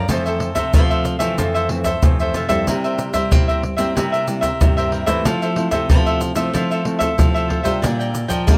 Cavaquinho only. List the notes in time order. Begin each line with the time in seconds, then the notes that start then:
0.10 F4 A4 C5 E5
0.25 A4 C5 E5
0.55 A4 C5 E5
0.74 F4 A4 C5 E5
0.90 A4 C5 E5
1.05 muted cavaquinho stroke
1.19 A4 C5 E5
1.38 F4 A4 C5 E5
1.54 A4 C5 E5
1.70 muted cavaquinho stroke
1.84 A4 C5 E5
2.20 A4 C5 E5
2.34 F4 A4 C5 E5
2.49 A4 C5 E5
2.67 E4 A#4 C5 E5
2.84 A#4 C5 E5
3.13 A#4 C5 E5
3.31 E4 A#4 C5 E5
3.48 A#4 C5 E5
3.62 muted cavaquinho stroke
3.77 A#4 C5 E5
3.95 E4 A#4 C5 E5
4.12 A#4 C5 E5
4.27 muted cavaquinho stroke
4.41 A#4 C5 E5
4.77 A#4 C5 E5
4.91 E4 A#4 C5 E5
5.06 A#4 C5 E5
5.25 F4 A4 C5 E5
5.42 A4 C5 E5
5.71 A4 C5 E5
5.89 F4 A4 C5 E5
6.06 A4 C5 E5
6.21 muted cavaquinho stroke
6.36 A4 C5 E5
6.54 F4 A4 C5 E5
6.71 A4 C5 E5
6.85 muted cavaquinho stroke
6.99 A4 C5 E5
7.34 A4 C5 E5
7.48 F4 A4 C5 E5
7.63 A4 C5 E5
7.82 D4 A#4 D5 G5
7.99 A#4 D5 G5
8.28 A#4 D5 G5
8.47 D4 A#4 D5 G5